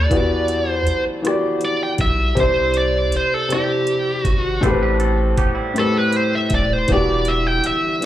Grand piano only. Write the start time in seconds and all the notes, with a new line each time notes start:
Already playing: B3 E4 F#4 G4 A4
0.09 E3 B3 F#4
0.14 G4 D5
1.22 E3 B3 F#4
1.27 G4 D5
2.35 C3 C4 D4
2.40 E4 C5
3.49 C3 C4 D4
3.53 E4 D5
4.61 A2 A3 B3
4.66 G4 B4
4.71 C4
5.74 A2 A3 C4
5.78 G4 B4
6.88 E3 B3 D4
6.92 F#4 G4
8.01 E3 B3